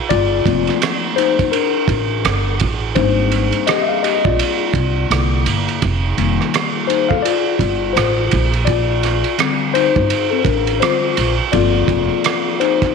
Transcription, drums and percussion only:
0.10 kick loud
0.10 ride medium
0.46 kick medium
0.46 ride medium
0.67 cross-stick soft
0.67 ride soft
0.82 cross-stick loud
0.82 hi-hat pedal medium
0.82 ride medium
1.18 ride medium
1.39 kick medium
1.39 ride soft
1.53 ride medium
1.88 kick medium
1.88 ride medium
2.25 cross-stick loud
2.25 hi-hat pedal soft
2.25 ride medium
2.60 kick medium
2.60 ride medium
2.96 kick loud
2.96 ride medium
3.32 ride medium
3.52 ride soft
3.67 cross-stick loud
3.67 hi-hat pedal soft
3.67 ride medium
4.04 ride medium
4.25 kick medium
4.39 ride medium
4.74 kick medium
4.74 ride medium
5.11 cross-stick loud
5.11 hi-hat pedal medium
5.11 ride medium
5.46 ride medium
5.68 ride soft
5.82 kick loud
5.82 ride medium
6.18 ride soft
6.41 cross-stick soft
6.54 cross-stick medium
6.54 hi-hat pedal medium
6.54 ride medium
6.90 ride medium
7.11 kick medium
7.25 ride medium
7.59 kick medium
7.59 ride medium
7.97 cross-stick loud
7.97 hi-hat pedal soft
7.97 ride medium
8.31 kick medium
8.31 ride medium
8.53 ride soft
8.67 kick medium
8.67 ride medium
9.03 cross-stick soft
9.03 ride medium
9.24 ride soft
9.39 cross-stick loud
9.39 hi-hat pedal soft
9.39 ride medium
9.75 ride medium
9.96 kick medium
10.10 ride medium
10.45 kick medium
10.45 ride medium
10.67 ride soft
10.82 cross-stick loud
10.82 hi-hat pedal medium
10.82 ride medium
11.17 ride medium
11.53 kick loud
11.53 ride medium
11.88 kick medium
11.88 ride medium
12.24 cross-stick medium
12.24 hi-hat pedal medium
12.24 ride medium
12.61 ride medium
12.82 kick medium
12.82 cross-stick soft
12.82 ride soft

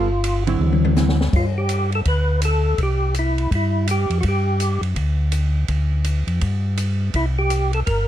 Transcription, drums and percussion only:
0.24 hi-hat pedal soft
0.24 ride medium
0.47 ride soft
0.61 mid tom soft
0.72 high tom soft
0.85 high tom medium
0.96 snare medium
0.96 hi-hat pedal soft
1.09 snare medium
1.21 snare medium
1.33 kick medium
1.33 crash medium
1.69 hi-hat pedal medium
1.69 ride medium
1.92 ride soft
2.05 kick soft
2.05 ride medium
2.42 hi-hat pedal medium
2.42 ride medium
2.78 kick soft
2.78 ride medium
3.14 hi-hat pedal soft
3.14 ride medium
3.38 ride soft
3.51 kick soft
3.51 ride medium
3.88 hi-hat pedal medium
3.88 ride medium
4.10 ride soft
4.23 kick soft
4.23 ride medium
4.60 hi-hat pedal medium
4.60 ride medium
4.83 ride soft
4.96 kick soft
4.96 ride medium
5.32 hi-hat pedal medium
5.32 ride medium
5.68 kick soft
5.68 ride medium
6.04 hi-hat pedal soft
6.04 ride medium
6.28 ride soft
6.41 kick soft
6.41 ride medium
6.77 hi-hat pedal medium
6.77 ride medium
7.14 kick soft
7.14 ride medium
7.50 hi-hat pedal medium
7.50 ride medium
7.73 ride soft
7.87 kick soft
7.87 ride medium

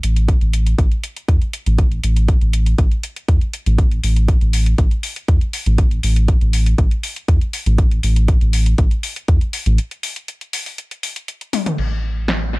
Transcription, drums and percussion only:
0.03 closed hi-hat medium
0.16 closed hi-hat soft
0.28 kick loud
0.28 closed hi-hat soft
0.41 closed hi-hat soft
0.53 closed hi-hat medium
0.67 closed hi-hat soft
0.78 kick loud
0.78 closed hi-hat soft
0.92 closed hi-hat soft
1.04 closed hi-hat medium
1.17 closed hi-hat soft
1.28 kick loud
1.28 closed hi-hat soft
1.42 closed hi-hat soft
1.53 closed hi-hat medium
1.66 closed hi-hat soft
1.78 kick loud
1.78 closed hi-hat soft
1.92 closed hi-hat soft
2.04 closed hi-hat medium
2.16 closed hi-hat soft
2.28 kick loud
2.28 closed hi-hat soft
2.41 closed hi-hat soft
2.53 closed hi-hat medium
2.66 closed hi-hat soft
2.78 kick loud
2.78 closed hi-hat soft
2.91 closed hi-hat soft
3.03 closed hi-hat medium
3.16 closed hi-hat soft
3.28 kick loud
3.28 closed hi-hat soft
3.41 closed hi-hat soft
3.53 closed hi-hat medium
3.66 closed hi-hat soft
3.78 kick loud
3.78 closed hi-hat soft
3.91 closed hi-hat soft
4.04 open hi-hat loud
4.16 closed hi-hat soft
4.28 kick loud
4.28 closed hi-hat soft
4.41 closed hi-hat soft
4.53 open hi-hat loud
4.66 closed hi-hat soft
4.78 kick loud
4.78 closed hi-hat soft
4.91 closed hi-hat soft
5.03 open hi-hat loud
5.16 closed hi-hat soft
5.28 kick loud
5.28 closed hi-hat soft
5.41 closed hi-hat soft
5.53 open hi-hat loud
5.66 closed hi-hat soft
5.78 kick loud
5.78 closed hi-hat soft
5.91 closed hi-hat soft
6.03 open hi-hat loud
6.16 closed hi-hat soft
6.28 kick loud
6.28 closed hi-hat soft
6.41 closed hi-hat soft
6.53 open hi-hat medium
6.66 closed hi-hat soft
6.78 kick loud
6.78 closed hi-hat soft
6.91 closed hi-hat soft
7.03 open hi-hat medium
7.16 closed hi-hat soft
7.28 kick loud
7.28 closed hi-hat soft
7.41 closed hi-hat soft
7.53 open hi-hat medium
7.66 closed hi-hat soft
7.78 kick loud
7.78 closed hi-hat soft
7.91 closed hi-hat soft
8.03 open hi-hat loud
8.16 closed hi-hat soft
8.28 kick loud
8.28 closed hi-hat soft
8.41 closed hi-hat soft
8.53 open hi-hat medium
8.66 closed hi-hat soft
8.78 kick loud
8.78 closed hi-hat soft
8.91 closed hi-hat soft
9.03 open hi-hat loud
9.16 closed hi-hat soft
9.28 kick loud
9.28 closed hi-hat soft
9.41 closed hi-hat soft
9.53 open hi-hat medium
9.66 closed hi-hat soft
9.78 closed hi-hat soft
9.91 closed hi-hat soft
10.03 open hi-hat loud
10.16 closed hi-hat soft
10.28 closed hi-hat soft
10.41 closed hi-hat soft
10.53 open hi-hat loud
10.66 open hi-hat medium
10.78 closed hi-hat soft
10.91 closed hi-hat soft
11.03 open hi-hat loud
11.16 closed hi-hat soft
11.28 closed hi-hat soft
11.41 closed hi-hat soft
11.53 open hi-hat loud
11.53 high tom medium
11.66 closed hi-hat soft
11.66 mid tom medium
11.78 crash medium
12.28 snare medium

